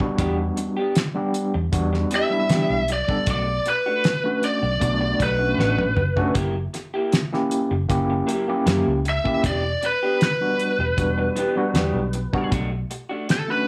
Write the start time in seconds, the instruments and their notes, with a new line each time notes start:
0.00 tine electric piano G3 B3 D4 F#4, muted fingered electric bass stroke, muted clean electric guitar stroke, kick
0.18 fingered electric bass E2, clean electric guitar E3 B3 D4 G4, kick, closed hi-hat
0.39 muted clean electric guitar stroke
0.57 muted clean electric guitar stroke, closed hi-hat
0.77 clean electric guitar B3 D4 G4
0.95 muted clean electric guitar stroke, snare, closed hi-hat
1.15 tine electric piano G3 B3 D4 G4
1.34 closed hi-hat
1.54 fingered electric bass E2, muted clean electric guitar stroke
1.72 fingered electric bass E2, tine electric piano G3 B3 D4 F#4, kick, closed hi-hat
1.93 muted clean electric guitar stroke, snare
2.11 clean electric guitar E3 B3 D4 G4, closed hi-hat
2.15 lead electric guitar E5
2.30 tine electric piano G3 B3 D4 E4, muted clean electric guitar stroke
2.49 clean electric guitar E3 B3 D4 G4, fingered electric bass E3, snare, closed hi-hat
2.70 fingered electric bass B1
2.88 muted clean electric guitar stroke, closed hi-hat
2.93 lead electric guitar D5
3.08 tine electric piano G3 B3 D4 A4, muted fingered electric bass stroke, muted clean electric guitar stroke, kick
3.26 fingered electric bass B1, clean electric guitar B2 A3 D4 F#4, lead electric guitar D5, kick, closed hi-hat
3.48 muted clean electric guitar stroke
3.66 lead electric guitar B4, muted clean electric guitar stroke, closed hi-hat
3.86 clean electric guitar A3 D4 F#4
4.04 muted clean electric guitar stroke, snare, closed hi-hat
4.24 tine electric piano A3 C#4 D4 F#4
4.43 lead electric guitar D5, closed hi-hat
4.63 fingered electric bass B1, muted clean electric guitar stroke
4.80 fingered electric bass B1, tine electric piano A3 B3 D4 F#4, kick, closed hi-hat
5.01 muted clean electric guitar stroke
5.19 fingered electric bass B1, clean electric guitar B2 A3 D4 F#4, lead electric guitar B4, kick, closed hi-hat
5.39 tine electric piano A3 C#4 D4 F#4, muted clean electric guitar stroke
5.58 fingered electric bass A1, clean electric guitar B2 A3 D4 F#4, snare
5.79 high tom
5.96 fingered electric bass F#1, muted clean electric guitar stroke, mid tom
6.16 tine electric piano A3 C#4 D4 F#4, muted clean electric guitar stroke, floor tom
6.34 fingered electric bass F#1, clean electric guitar F#3 A#3 E4 G4, kick, closed hi-hat
6.55 muted clean electric guitar stroke
6.74 muted clean electric guitar stroke, snare, closed hi-hat
6.94 clean electric guitar A#3 E4 G4
7.12 muted clean electric guitar stroke, snare, closed hi-hat
7.32 tine electric piano A#3 C#4 E4 G4, snare
7.51 closed hi-hat
7.71 fingered electric bass F#1, muted clean electric guitar stroke
7.89 fingered electric bass F#1, tine electric piano A#3 C#4 E4 G4, kick, closed hi-hat
8.10 muted clean electric guitar stroke
8.27 clean electric guitar F#3 A#3 E4 G4, closed hi-hat
8.48 tine electric piano A#3 C#4 E4 G4, muted clean electric guitar stroke
8.66 fingered electric bass F#2, clean electric guitar F#3 A#3 E4 G4, snare, closed hi-hat
8.86 fingered electric bass C#2
9.05 muted clean electric guitar stroke, closed hi-hat
9.09 lead electric guitar E5
9.24 tine electric piano A#3 C#4 E4 G4, muted clean electric guitar stroke, kick
9.43 fingered electric bass E1, clean electric guitar E3 B3 D4 G4, lead electric guitar D5, kick, closed hi-hat
9.64 muted clean electric guitar stroke
9.83 lead electric guitar B4, muted clean electric guitar stroke, closed hi-hat
10.03 clean electric guitar B3 D4 G4
10.21 lead electric guitar B4, muted clean electric guitar stroke, snare, closed hi-hat
10.40 tine electric piano G3 B3 D4 F#4
10.60 closed hi-hat
10.79 fingered electric bass E1, muted clean electric guitar stroke
10.97 fingered electric bass E1, tine electric piano G3 B3 D4 F#4, kick, closed hi-hat
11.18 muted clean electric guitar stroke
11.36 clean electric guitar E3 B3 D4 G4, closed hi-hat
11.56 tine electric piano G3 B3 D4 F#4, muted clean electric guitar stroke
11.74 fingered electric bass E2, clean electric guitar E3 B3 D4 G4, snare, closed hi-hat
11.94 fingered electric bass B1
12.13 muted clean electric guitar stroke, closed hi-hat
12.33 tine electric piano G3 B3 D4 F#4, muted fingered electric bass stroke, muted clean electric guitar stroke, kick
12.51 fingered electric bass B1, clean electric guitar B2 A3 D4 F#4, kick, closed hi-hat
12.72 muted clean electric guitar stroke
12.90 muted clean electric guitar stroke, closed hi-hat
13.09 clean electric guitar A3 D4 F#4
13.28 lead electric guitar A4, muted clean electric guitar stroke, snare, closed hi-hat
13.48 tine electric piano A3 C#4 D4 F#4, lead electric guitar B4